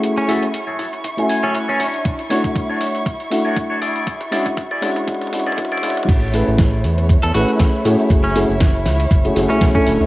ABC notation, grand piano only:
X:1
M:4/4
L:1/16
Q:"Swing 16ths" 1/4=119
K:A
V:1 name="Grand piano"
[A,CEFG]2 [A,CEFG] z6 [A,CEFg]4- [A,CEFg] z2 | z2 [A,DEFc]6 z2 [A,DEF]6 | z2 [G,CDEF]2 z2 [G,CDEF]2 [G,CDEF]2 [G,CDEF]2 [G,CDEF]2 [G,CDEF]2 | z2 [A,CEGB]8 [A,CEGB]4 [A,CEFG]2- |
[A,CEFG]2 [A,CEFG] z6 [A,CEFG] [A,CEFG] [A,CEFG]2 [A,CDEA]3 |]